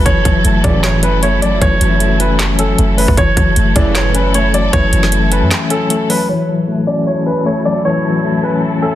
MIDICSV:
0, 0, Header, 1, 7, 480
1, 0, Start_track
1, 0, Key_signature, 3, "minor"
1, 0, Tempo, 389610
1, 70, Time_signature, 4, 2, 24, 8
1, 11026, End_track
2, 0, Start_track
2, 0, Title_t, "Grand piano"
2, 0, Program_c, 0, 0
2, 67, Note_on_c, 0, 73, 102
2, 745, Note_off_c, 0, 73, 0
2, 785, Note_on_c, 0, 74, 82
2, 969, Note_off_c, 0, 74, 0
2, 1029, Note_on_c, 0, 73, 85
2, 1212, Note_off_c, 0, 73, 0
2, 1269, Note_on_c, 0, 71, 87
2, 1451, Note_off_c, 0, 71, 0
2, 1512, Note_on_c, 0, 73, 84
2, 1693, Note_off_c, 0, 73, 0
2, 1750, Note_on_c, 0, 74, 82
2, 1932, Note_off_c, 0, 74, 0
2, 1992, Note_on_c, 0, 73, 98
2, 2668, Note_off_c, 0, 73, 0
2, 2711, Note_on_c, 0, 71, 77
2, 2892, Note_off_c, 0, 71, 0
2, 3191, Note_on_c, 0, 69, 87
2, 3642, Note_off_c, 0, 69, 0
2, 3668, Note_on_c, 0, 71, 81
2, 3851, Note_off_c, 0, 71, 0
2, 3917, Note_on_c, 0, 73, 103
2, 4590, Note_off_c, 0, 73, 0
2, 4627, Note_on_c, 0, 74, 78
2, 4810, Note_off_c, 0, 74, 0
2, 4870, Note_on_c, 0, 73, 93
2, 5052, Note_off_c, 0, 73, 0
2, 5108, Note_on_c, 0, 71, 75
2, 5291, Note_off_c, 0, 71, 0
2, 5356, Note_on_c, 0, 73, 83
2, 5536, Note_off_c, 0, 73, 0
2, 5595, Note_on_c, 0, 74, 88
2, 5775, Note_off_c, 0, 74, 0
2, 5828, Note_on_c, 0, 73, 117
2, 6506, Note_off_c, 0, 73, 0
2, 6551, Note_on_c, 0, 71, 73
2, 6732, Note_off_c, 0, 71, 0
2, 7033, Note_on_c, 0, 69, 89
2, 7483, Note_off_c, 0, 69, 0
2, 7513, Note_on_c, 0, 71, 79
2, 7694, Note_off_c, 0, 71, 0
2, 7748, Note_on_c, 0, 73, 94
2, 8426, Note_off_c, 0, 73, 0
2, 8465, Note_on_c, 0, 74, 77
2, 8649, Note_off_c, 0, 74, 0
2, 8710, Note_on_c, 0, 73, 81
2, 8892, Note_off_c, 0, 73, 0
2, 8949, Note_on_c, 0, 71, 84
2, 9132, Note_off_c, 0, 71, 0
2, 9191, Note_on_c, 0, 73, 76
2, 9373, Note_off_c, 0, 73, 0
2, 9429, Note_on_c, 0, 74, 76
2, 9612, Note_off_c, 0, 74, 0
2, 9671, Note_on_c, 0, 73, 95
2, 10348, Note_off_c, 0, 73, 0
2, 10391, Note_on_c, 0, 71, 69
2, 10573, Note_off_c, 0, 71, 0
2, 10869, Note_on_c, 0, 69, 83
2, 11026, Note_off_c, 0, 69, 0
2, 11026, End_track
3, 0, Start_track
3, 0, Title_t, "String section"
3, 0, Program_c, 1, 48
3, 0, Note_on_c, 1, 54, 80
3, 0, Note_on_c, 1, 69, 90
3, 70, Note_on_c, 1, 64, 73
3, 3860, Note_off_c, 1, 69, 0
3, 3872, Note_off_c, 1, 64, 0
3, 3909, Note_on_c, 1, 64, 71
3, 3909, Note_on_c, 1, 69, 86
3, 7700, Note_off_c, 1, 54, 0
3, 7711, Note_off_c, 1, 64, 0
3, 7711, Note_off_c, 1, 69, 0
3, 7749, Note_on_c, 1, 54, 76
3, 7749, Note_on_c, 1, 69, 81
3, 7750, Note_on_c, 1, 64, 66
3, 11026, Note_off_c, 1, 54, 0
3, 11026, Note_off_c, 1, 64, 0
3, 11026, Note_off_c, 1, 69, 0
3, 11026, End_track
4, 0, Start_track
4, 0, Title_t, "Tine electric piano"
4, 0, Program_c, 2, 4
4, 0, Control_c, 2, 64, 127
4, 72, Note_on_c, 2, 52, 93
4, 85, Control_c, 2, 64, 0
4, 284, Control_c, 2, 64, 127
4, 313, Note_on_c, 2, 54, 85
4, 549, Note_on_c, 2, 57, 87
4, 791, Note_on_c, 2, 61, 89
4, 1254, Note_off_c, 2, 61, 0
4, 1269, Note_on_c, 2, 61, 75
4, 1271, Note_off_c, 2, 52, 0
4, 1496, Note_off_c, 2, 57, 0
4, 1511, Note_off_c, 2, 54, 0
4, 1511, Note_on_c, 2, 57, 93
4, 1752, Note_on_c, 2, 54, 78
4, 1990, Note_on_c, 2, 52, 105
4, 2212, Note_off_c, 2, 54, 0
4, 2227, Note_on_c, 2, 54, 91
4, 2455, Note_off_c, 2, 57, 0
4, 2469, Note_off_c, 2, 61, 0
4, 2470, Note_on_c, 2, 57, 90
4, 2716, Note_on_c, 2, 61, 85
4, 3176, Note_off_c, 2, 61, 0
4, 3190, Note_off_c, 2, 52, 0
4, 3190, Note_on_c, 2, 61, 85
4, 3418, Note_off_c, 2, 57, 0
4, 3428, Note_off_c, 2, 54, 0
4, 3433, Note_on_c, 2, 57, 89
4, 3667, Note_on_c, 2, 54, 85
4, 3907, Note_on_c, 2, 52, 96
4, 3908, Note_off_c, 2, 54, 0
4, 3910, Note_off_c, 2, 61, 0
4, 3911, Note_off_c, 2, 57, 0
4, 3923, Control_c, 2, 64, 0
4, 4123, Control_c, 2, 64, 127
4, 4150, Note_on_c, 2, 54, 81
4, 4390, Note_on_c, 2, 57, 93
4, 4629, Note_on_c, 2, 61, 88
4, 5096, Note_off_c, 2, 61, 0
4, 5108, Note_off_c, 2, 52, 0
4, 5111, Note_on_c, 2, 61, 86
4, 5337, Note_off_c, 2, 57, 0
4, 5350, Note_off_c, 2, 54, 0
4, 5351, Note_on_c, 2, 57, 80
4, 5590, Note_on_c, 2, 54, 81
4, 5833, Note_on_c, 2, 52, 106
4, 6054, Note_off_c, 2, 54, 0
4, 6068, Note_on_c, 2, 54, 83
4, 6296, Note_off_c, 2, 57, 0
4, 6310, Note_off_c, 2, 61, 0
4, 6311, Note_on_c, 2, 57, 88
4, 6548, Note_on_c, 2, 61, 86
4, 7015, Note_off_c, 2, 61, 0
4, 7030, Note_on_c, 2, 61, 89
4, 7032, Note_off_c, 2, 52, 0
4, 7254, Note_off_c, 2, 57, 0
4, 7269, Note_off_c, 2, 54, 0
4, 7269, Note_on_c, 2, 57, 92
4, 7510, Note_on_c, 2, 54, 84
4, 7750, Note_off_c, 2, 54, 0
4, 7750, Note_off_c, 2, 57, 0
4, 7750, Note_off_c, 2, 61, 0
4, 7751, Note_on_c, 2, 52, 86
4, 7765, Control_c, 2, 64, 0
4, 7992, Note_on_c, 2, 54, 81
4, 8015, Control_c, 2, 64, 127
4, 8229, Note_on_c, 2, 57, 84
4, 8472, Note_on_c, 2, 61, 85
4, 8935, Note_off_c, 2, 61, 0
4, 8950, Note_on_c, 2, 61, 73
4, 8951, Note_off_c, 2, 52, 0
4, 9175, Note_off_c, 2, 57, 0
4, 9190, Note_on_c, 2, 57, 85
4, 9191, Note_off_c, 2, 54, 0
4, 9432, Note_on_c, 2, 54, 77
4, 9670, Note_on_c, 2, 52, 100
4, 9893, Note_off_c, 2, 54, 0
4, 9907, Note_on_c, 2, 54, 84
4, 10136, Note_off_c, 2, 57, 0
4, 10150, Note_off_c, 2, 61, 0
4, 10151, Note_on_c, 2, 57, 85
4, 10394, Note_on_c, 2, 61, 82
4, 10856, Note_off_c, 2, 61, 0
4, 10870, Note_off_c, 2, 52, 0
4, 10871, Note_on_c, 2, 61, 83
4, 11026, Note_off_c, 2, 54, 0
4, 11026, Note_off_c, 2, 57, 0
4, 11026, Note_off_c, 2, 61, 0
4, 11026, End_track
5, 0, Start_track
5, 0, Title_t, "Analog polysynth"
5, 0, Program_c, 3, 90
5, 790, Note_on_c, 3, 45, 101
5, 790, Note_on_c, 3, 49, 92
5, 790, Note_on_c, 3, 52, 105
5, 1246, Note_off_c, 3, 45, 0
5, 1246, Note_off_c, 3, 49, 0
5, 1246, Note_off_c, 3, 52, 0
5, 4629, Note_on_c, 3, 45, 93
5, 4629, Note_on_c, 3, 49, 96
5, 4629, Note_on_c, 3, 52, 115
5, 5086, Note_off_c, 3, 45, 0
5, 5086, Note_off_c, 3, 49, 0
5, 5086, Note_off_c, 3, 52, 0
5, 11026, End_track
6, 0, Start_track
6, 0, Title_t, "808-style bass"
6, 0, Program_c, 4, 38
6, 71, Note_on_c, 4, 30, 117
6, 301, Note_off_c, 4, 30, 0
6, 310, Note_on_c, 4, 30, 108
6, 541, Note_off_c, 4, 30, 0
6, 549, Note_on_c, 4, 30, 109
6, 780, Note_off_c, 4, 30, 0
6, 791, Note_on_c, 4, 30, 111
6, 1749, Note_on_c, 4, 31, 101
6, 1767, Note_off_c, 4, 30, 0
6, 1877, Note_on_c, 4, 30, 101
6, 1896, Note_off_c, 4, 31, 0
6, 1984, Note_off_c, 4, 30, 0
6, 1990, Note_on_c, 4, 30, 111
6, 2220, Note_off_c, 4, 30, 0
6, 2229, Note_on_c, 4, 30, 107
6, 3382, Note_off_c, 4, 30, 0
6, 3431, Note_on_c, 4, 30, 109
6, 3783, Note_off_c, 4, 30, 0
6, 3797, Note_on_c, 4, 30, 102
6, 3903, Note_off_c, 4, 30, 0
6, 3910, Note_on_c, 4, 30, 114
6, 4141, Note_off_c, 4, 30, 0
6, 4150, Note_on_c, 4, 30, 107
6, 4381, Note_off_c, 4, 30, 0
6, 4392, Note_on_c, 4, 30, 110
6, 4621, Note_off_c, 4, 30, 0
6, 4631, Note_on_c, 4, 30, 111
6, 5782, Note_off_c, 4, 30, 0
6, 5830, Note_on_c, 4, 30, 112
6, 6061, Note_off_c, 4, 30, 0
6, 6071, Note_on_c, 4, 30, 111
6, 6677, Note_on_c, 4, 42, 103
6, 6695, Note_off_c, 4, 30, 0
6, 6790, Note_off_c, 4, 42, 0
6, 11026, End_track
7, 0, Start_track
7, 0, Title_t, "Drums"
7, 71, Note_on_c, 9, 36, 117
7, 71, Note_on_c, 9, 42, 81
7, 194, Note_off_c, 9, 36, 0
7, 195, Note_off_c, 9, 42, 0
7, 310, Note_on_c, 9, 36, 100
7, 311, Note_on_c, 9, 42, 84
7, 434, Note_off_c, 9, 36, 0
7, 435, Note_off_c, 9, 42, 0
7, 550, Note_on_c, 9, 42, 82
7, 673, Note_off_c, 9, 42, 0
7, 789, Note_on_c, 9, 42, 89
7, 791, Note_on_c, 9, 36, 102
7, 912, Note_off_c, 9, 42, 0
7, 915, Note_off_c, 9, 36, 0
7, 1029, Note_on_c, 9, 38, 120
7, 1031, Note_on_c, 9, 42, 85
7, 1042, Note_on_c, 9, 39, 94
7, 1153, Note_off_c, 9, 38, 0
7, 1154, Note_off_c, 9, 42, 0
7, 1166, Note_off_c, 9, 39, 0
7, 1267, Note_on_c, 9, 42, 80
7, 1390, Note_off_c, 9, 42, 0
7, 1511, Note_on_c, 9, 42, 90
7, 1634, Note_off_c, 9, 42, 0
7, 1754, Note_on_c, 9, 42, 71
7, 1877, Note_off_c, 9, 42, 0
7, 1990, Note_on_c, 9, 36, 117
7, 1991, Note_on_c, 9, 42, 84
7, 2113, Note_off_c, 9, 36, 0
7, 2114, Note_off_c, 9, 42, 0
7, 2230, Note_on_c, 9, 42, 88
7, 2353, Note_off_c, 9, 42, 0
7, 2469, Note_on_c, 9, 42, 80
7, 2592, Note_off_c, 9, 42, 0
7, 2710, Note_on_c, 9, 42, 90
7, 2833, Note_off_c, 9, 42, 0
7, 2949, Note_on_c, 9, 38, 121
7, 2950, Note_on_c, 9, 42, 83
7, 2962, Note_on_c, 9, 39, 96
7, 3072, Note_off_c, 9, 38, 0
7, 3073, Note_off_c, 9, 42, 0
7, 3085, Note_off_c, 9, 39, 0
7, 3188, Note_on_c, 9, 42, 80
7, 3311, Note_off_c, 9, 42, 0
7, 3431, Note_on_c, 9, 42, 87
7, 3554, Note_off_c, 9, 42, 0
7, 3675, Note_on_c, 9, 46, 79
7, 3798, Note_off_c, 9, 46, 0
7, 3798, Note_on_c, 9, 36, 98
7, 3911, Note_off_c, 9, 36, 0
7, 3911, Note_on_c, 9, 36, 118
7, 3911, Note_on_c, 9, 42, 84
7, 4034, Note_off_c, 9, 36, 0
7, 4035, Note_off_c, 9, 42, 0
7, 4150, Note_on_c, 9, 36, 94
7, 4152, Note_on_c, 9, 42, 84
7, 4273, Note_off_c, 9, 36, 0
7, 4275, Note_off_c, 9, 42, 0
7, 4389, Note_on_c, 9, 42, 81
7, 4512, Note_off_c, 9, 42, 0
7, 4629, Note_on_c, 9, 42, 85
7, 4631, Note_on_c, 9, 36, 99
7, 4752, Note_off_c, 9, 42, 0
7, 4754, Note_off_c, 9, 36, 0
7, 4869, Note_on_c, 9, 38, 116
7, 4870, Note_on_c, 9, 42, 85
7, 4882, Note_on_c, 9, 39, 95
7, 4992, Note_off_c, 9, 38, 0
7, 4993, Note_off_c, 9, 42, 0
7, 5005, Note_off_c, 9, 39, 0
7, 5107, Note_on_c, 9, 42, 76
7, 5231, Note_off_c, 9, 42, 0
7, 5352, Note_on_c, 9, 42, 88
7, 5475, Note_off_c, 9, 42, 0
7, 5594, Note_on_c, 9, 42, 71
7, 5718, Note_off_c, 9, 42, 0
7, 5830, Note_on_c, 9, 36, 115
7, 5830, Note_on_c, 9, 42, 83
7, 5953, Note_off_c, 9, 36, 0
7, 5953, Note_off_c, 9, 42, 0
7, 6071, Note_on_c, 9, 42, 83
7, 6194, Note_off_c, 9, 42, 0
7, 6197, Note_on_c, 9, 38, 66
7, 6309, Note_on_c, 9, 42, 82
7, 6321, Note_off_c, 9, 38, 0
7, 6432, Note_off_c, 9, 42, 0
7, 6549, Note_on_c, 9, 42, 87
7, 6672, Note_off_c, 9, 42, 0
7, 6789, Note_on_c, 9, 38, 121
7, 6791, Note_on_c, 9, 42, 84
7, 6802, Note_on_c, 9, 39, 94
7, 6913, Note_off_c, 9, 38, 0
7, 6914, Note_off_c, 9, 42, 0
7, 6926, Note_off_c, 9, 39, 0
7, 7027, Note_on_c, 9, 42, 76
7, 7150, Note_off_c, 9, 42, 0
7, 7271, Note_on_c, 9, 42, 92
7, 7395, Note_off_c, 9, 42, 0
7, 7514, Note_on_c, 9, 46, 79
7, 7637, Note_off_c, 9, 46, 0
7, 11026, End_track
0, 0, End_of_file